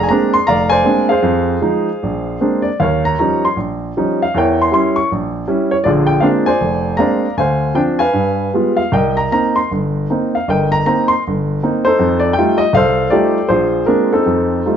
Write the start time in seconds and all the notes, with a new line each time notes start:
Already playing: G#4 D5
0.03 G#5
0.09 G#3 A#3 C4 D4 A#5
0.34 C6
0.47 F1 D5 F5 A#5
0.70 C5 D5 G#5
0.84 G#3 A#3 C4 D4
1.09 G#4 C5 F5
1.22 F2
1.62 F3 G#3 D#4
2.03 A#1
2.41 G#3 A#3 C4 D4
2.62 D5
2.80 D#2 A#4 C#5 F5
3.05 A#5
3.19 F3 G3 C#4 D#4 A#5
3.45 C6
3.56 A#1
3.97 F3 G3 C#4 D#4
4.22 F5
4.34 E2 E3 A#4 C#5 G5
4.62 C6
4.72 G3 C#4 E4 C6
4.96 C#6
5.12 A#1
5.48 G3 C#4 E4
5.71 C#5
5.84 A#1 D3 F4 G#4 D5
6.07 G5
6.20 G#3 A#3 C4 D4 F5
6.46 C5 D5 G#5
6.61 F1
6.97 G#3 A#3 C4 D4 D5 F5 A#5
7.37 D2 C5 F5 G#5
7.75 F3 C4 D4 G5
7.99 B4 F5 G#5
8.13 G2
8.54 G3 G#3 B3 F4
8.77 F5
8.92 C2 A#4 D#5 G5
9.17 A#5
9.32 A#3 C4 D#4 A#5
9.56 C6
9.71 G1
10.10 A#3 C4 D#4
10.35 F5
10.48 G1 A#4 D#5 G5
10.72 A#5
10.86 A#3 C4 D#4 A#5
11.08 C6
11.28 G1
11.63 A#3 C4 D#4
11.85 D#4 A4 C5
11.99 F2
12.19 D5
12.33 G5
12.38 G3 A3 D#4 F4
12.58 D#5
12.73 C2 A4 C5 F5
13.10 G3 A3 D#4 F4 G4 A4 D5
13.49 A#1 F4 G#4 C5
13.86 G#3 A#3 C4 D4 A#4
14.13 C4 D#4 A4
14.26 F2
14.66 G3 A3 D#4 F4